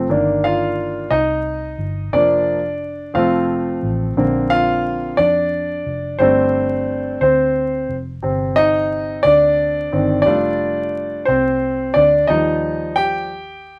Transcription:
0.09 1.07 G1 medium
0.09 1.07 D#3 soft
0.09 1.07 A#3 soft
0.09 1.08 D4 soft
0.44 1.08 F4 medium
0.44 1.13 F5 medium
1.11 1.75 C2 medium
1.11 2.09 D#4 medium
1.11 2.16 D#5 medium
1.78 2.10 G1 medium
2.13 3.11 F1 medium
2.13 2.58 F3 soft
2.13 2.58 A#3 soft
2.13 3.12 D4 medium
2.13 3.18 D5 medium
3.14 3.79 F1 medium
3.14 4.12 F3 soft
3.14 4.12 A3 soft
3.14 4.13 C4 medium
3.14 3.87 F4 medium
3.14 3.87 F5 medium
3.83 4.14 A1 medium
4.16 5.14 A#1 medium
4.16 5.14 D3 soft
4.16 5.14 A#3 soft
4.16 5.15 C4 soft
4.50 5.15 F4 medium
4.50 5.20 F5 loud
5.17 5.82 F2 medium
5.17 6.16 D4 medium
5.17 6.22 D5 medium
5.86 6.18 F1 medium
6.19 7.18 G1 medium
6.19 7.17 G3 soft
6.19 7.17 A3 soft
6.19 7.18 C4 medium
6.19 7.18 D4 medium
6.19 7.17 C5 medium
7.21 7.85 D2 medium
7.21 7.94 C4 soft
7.21 7.93 C5 medium
7.89 8.21 F1 medium
8.22 9.21 G1 medium
8.22 10.22 C3 soft
8.22 9.91 C4 soft
8.56 9.21 D#4 medium
8.56 9.26 D#5 loud
9.23 9.88 D2 medium
9.23 9.92 D4 medium
9.23 10.20 D5 medium
9.92 10.25 G1 medium
9.92 10.23 D#3 soft
9.92 10.23 C4 soft
9.92 10.23 D4 soft
10.22 12.25 G3 soft
10.22 12.25 A3 soft
10.22 11.29 D5 medium
10.26 11.24 F1 medium
10.26 11.24 D4 medium
10.26 12.25 F4 soft
11.25 11.92 C2 medium
11.25 12.01 C4 medium
11.25 11.97 C5 medium
11.94 12.28 D2 medium
11.94 12.27 D4 medium
11.94 12.29 D5 medium
12.28 13.79 D#2 medium
12.28 13.26 F3 soft
12.28 13.27 G3 soft
12.28 12.93 D#4 medium
12.28 12.98 D#5 medium
12.96 13.79 G4 medium
12.96 13.79 G5 medium

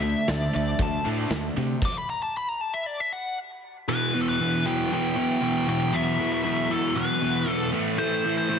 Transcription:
0.00 0.14 D2 medium
0.00 0.25 D3 medium
0.00 0.26 A3 medium
0.00 1.80 D4 medium
0.00 1.80 A4 medium
0.00 0.28 E5 loud
0.00 1.80 E5 loud
0.00 ride medium
0.28 0.47 D2 medium
0.28 0.51 D3 medium
0.28 0.51 A3 medium
0.28 0.54 D5 medium
0.28 snare loud
0.28 ride loud
0.53 0.73 D2 medium
0.53 0.77 D3 medium
0.53 0.77 A3 medium
0.53 0.80 D5 medium
0.53 ride medium
0.79 0.98 D2 loud
0.79 1.03 D3 medium
0.79 1.03 A3 medium
0.79 1.06 A5 loud
0.79 kick loud
0.79 ride medium
1.04 1.24 A2 medium
1.04 1.29 D3 medium
1.04 1.29 A3 loud
1.04 1.29 D4 loud
1.04 ride medium
1.30 1.49 D2 medium
1.30 1.54 D3 medium
1.30 1.54 A3 medium
1.30 snare loud
1.30 ride loud
1.57 1.75 C3 medium
1.57 1.80 D3 medium
1.57 1.80 A3 medium
1.57 ride medium
1.82 1.96 D6 medium
1.82 kick loud
1.82 crash medium
1.98 2.09 B5 medium
2.10 2.22 A#5 medium
2.22 2.34 A5 loud
2.37 2.48 B5 loud
2.48 2.61 A#5 medium
2.61 2.73 A5 medium
2.74 2.86 E5 medium
2.86 3.00 D5 loud
3.00 3.12 E5 medium
3.13 3.37 F#5 loud
3.88 4.13 E2 medium
3.88 4.13 B2 medium
3.88 4.15 E3 loud
3.88 7.70 E3 medium
3.88 7.70 F#3 loud
3.88 7.70 B3 medium
3.88 4.21 B4 loud
4.14 4.39 E2 medium
4.14 4.39 B2 medium
4.14 4.40 E3 loud
4.21 4.28 A4 medium
4.29 4.68 B4 loud
4.40 4.64 E2 loud
4.40 4.65 B2 loud
4.40 4.66 E3 loud
4.66 4.91 E2 medium
4.66 4.91 B2 medium
4.66 4.92 E3 medium
4.66 4.92 G5 loud
4.92 5.15 E2 loud
4.92 5.16 B2 loud
4.92 5.17 E3 loud
4.92 5.68 G5 loud
5.16 5.41 E2 medium
5.16 5.41 B2 loud
5.16 5.42 E3 medium
5.42 5.66 E2 medium
5.42 5.66 B2 loud
5.42 5.68 E3 medium
5.67 5.92 E2 medium
5.67 5.92 B2 medium
5.67 5.93 E3 medium
5.67 5.95 G5 loud
5.93 6.18 E2 loud
5.93 6.18 B2 loud
5.93 6.20 E3 loud
5.93 6.31 E5 loud
6.19 6.43 E2 medium
6.19 6.43 B2 loud
6.19 6.44 E3 medium
6.32 6.72 E5 loud
6.44 6.68 E2 medium
6.44 6.69 B2 loud
6.44 6.70 E3 loud
6.70 6.95 E2 medium
6.70 6.96 B2 medium
6.70 6.96 E3 loud
6.70 6.95 A4 medium
6.96 7.21 E2 loud
6.96 7.21 B2 loud
6.96 7.22 E3 loud
6.96 7.50 B4 medium
7.22 7.45 E2 medium
7.22 7.46 B2 loud
7.22 7.47 E3 loud
7.46 7.71 E2 medium
7.46 7.71 B2 loud
7.46 7.73 E3 loud
7.46 7.70 A4 medium
7.72 7.97 A2 loud
7.72 7.98 E3 loud
7.72 8.59 A3 medium
7.72 7.98 A3 loud
7.72 8.59 E4 medium
7.72 8.59 C5 medium
7.98 8.24 A2 loud
7.98 8.25 E3 loud
7.98 8.24 A3 loud
7.98 8.34 C5 medium
8.25 8.48 A2 medium
8.25 8.50 E3 medium
8.25 8.49 A3 medium
8.37 8.59 C5 loud
8.50 8.59 A2 medium
8.50 8.59 E3 loud
8.50 8.59 A3 loud

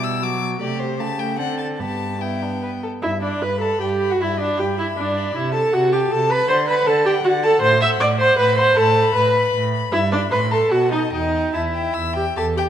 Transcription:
0.00 0.60 B2 medium
0.00 0.23 G3 soft
0.00 0.24 E4 medium
0.00 0.25 E6 medium
0.22 0.60 F#3 soft
0.22 0.61 F#4 soft
0.22 0.42 D6 medium
0.60 1.01 C3 medium
0.60 0.96 A3 soft
0.60 0.97 G4 medium
0.60 0.81 D5 medium
0.80 1.02 C5 medium
0.99 1.40 C#3 soft
0.99 1.07 A3 soft
0.99 1.38 G4 soft
0.99 1.21 A5 medium
1.18 1.39 A3 soft
1.18 1.38 G5 medium
1.38 1.81 D3 soft
1.38 1.81 C4 soft
1.38 1.81 A4 soft
1.38 1.58 F#5 medium
1.58 1.66 A5 medium
1.79 2.83 G2 soft
1.79 2.20 B3 soft
1.79 2.21 G4 soft
1.79 2.23 A5 medium
2.21 2.81 B3 soft
2.21 2.44 E4 soft
2.21 2.83 G5 soft
2.42 2.61 D4 soft
2.62 2.70 B4 medium
2.83 2.91 A4 soft
3.02 3.37 G2 medium
3.02 3.10 E4 medium
3.02 3.21 E5 medium
3.22 3.44 D4 medium
3.22 3.41 D5 soft
3.22 3.61 B5 soft
3.41 3.77 G2 medium
3.41 3.60 B4 medium
3.41 3.63 B5 medium
3.61 3.80 A4 medium
3.61 3.80 A5 medium
3.61 4.00 B5 soft
3.81 4.16 G2 medium
3.81 4.13 G4 medium
3.81 3.89 G5 medium
4.01 4.20 B5 soft
4.10 4.23 F#4 medium
4.10 4.14 F#5 medium
4.20 4.54 G2 medium
4.20 4.40 E4 medium
4.20 4.41 E5 medium
4.20 4.39 B5 soft
4.39 4.61 D4 medium
4.39 4.57 D5 medium
4.39 4.76 B5 soft
4.58 4.93 G2 soft
4.58 4.78 G4 medium
4.58 4.66 G5 medium
4.77 4.86 E4 medium
4.77 4.99 E5 soft
4.77 5.15 B5 soft
4.97 5.31 G2 medium
4.97 5.35 D4 medium
4.97 5.37 D5 medium
5.16 5.35 B5 soft
5.35 5.69 C3 medium
5.35 5.54 E4 medium
5.35 5.54 E5 medium
5.54 5.75 A4 medium
5.54 5.73 A5 medium
5.54 5.91 A5 medium
5.73 6.07 C3 medium
5.73 5.94 F#4 medium
5.73 5.92 F#5 medium
5.92 6.13 G4 medium
5.92 6.00 G5 medium
5.92 6.29 A5 soft
6.11 6.44 C3 medium
6.11 6.32 A4 medium
6.11 6.33 A5 medium
6.30 6.48 B4 loud
6.30 6.49 A5 medium
6.30 6.51 B5 medium
6.49 6.82 D3 medium
6.49 6.57 C5 medium
6.49 6.67 F#5 medium
6.49 6.68 C6 medium
6.68 6.88 B4 medium
6.68 7.04 F#5 medium
6.68 6.86 B5 medium
6.87 7.20 D3 medium
6.87 7.05 A4 medium
6.87 7.07 A5 medium
7.06 7.13 G4 medium
7.06 7.42 F#5 medium
7.06 7.24 G5 medium
7.24 7.57 D3 medium
7.24 7.32 F#4 medium
7.24 7.45 F#5 medium
7.43 7.61 A4 loud
7.43 7.62 F#5 medium
7.43 7.61 A5 medium
7.62 7.96 A2 medium
7.62 7.81 C5 loud
7.62 7.81 C6 loud
7.81 7.89 E5 loud
7.81 8.18 F#5 medium
7.81 7.89 E6 medium
8.00 8.34 A2 medium
8.00 8.08 D5 medium
8.00 8.08 D6 medium
8.19 8.38 C5 loud
8.19 8.57 F#5 medium
8.19 8.28 C6 medium
8.38 8.73 A2 medium
8.38 8.57 B4 loud
8.38 8.59 B5 medium
8.57 8.78 C5 loud
8.57 8.77 F#5 medium
8.57 8.76 C6 medium
8.77 9.11 A2 medium
8.77 9.14 A4 loud
8.77 9.15 A5 loud
8.77 8.96 B5 medium
8.97 9.35 B5 medium
9.14 9.50 A2 medium
9.14 9.53 B4 medium
9.14 9.54 B5 medium
9.36 9.73 B5 medium
9.54 9.89 A2 medium
9.74 9.93 B5 medium
9.92 10.28 G2 medium
9.92 10.00 E4 medium
9.92 10.11 E5 medium
10.12 10.20 D4 medium
10.12 10.20 D5 medium
10.12 10.31 B5 medium
10.31 10.67 A2 medium
10.31 10.39 B4 medium
10.31 10.53 B5 medium
10.31 10.51 C6 medium
10.51 10.73 A4 medium
10.51 10.72 A5 medium
10.51 10.71 C6 soft
10.71 11.08 B2 medium
10.71 10.91 F#4 medium
10.71 10.91 F#5 medium
10.71 10.91 A5 soft
10.91 10.99 D#4 medium
10.91 11.12 D#5 medium
10.91 11.12 A5 soft
11.12 11.50 E2 medium
11.12 11.56 D#4 medium
11.12 11.54 D#5 medium
11.12 11.34 G5 soft
11.34 11.51 G5 soft
11.53 11.91 E2 medium
11.53 12.16 E4 medium
11.53 12.15 E5 soft
11.53 11.61 A5 medium
11.74 11.96 G5 medium
11.94 12.33 E2 soft
11.94 12.15 E6 medium
12.16 12.24 G4 medium
12.16 12.36 G5 medium
12.37 12.69 E2 medium
12.37 12.45 G4 medium
12.37 12.56 A4 medium
12.37 12.45 A5 medium
12.57 12.65 G4 medium
12.57 12.65 G4 soft
12.57 12.65 G5 medium

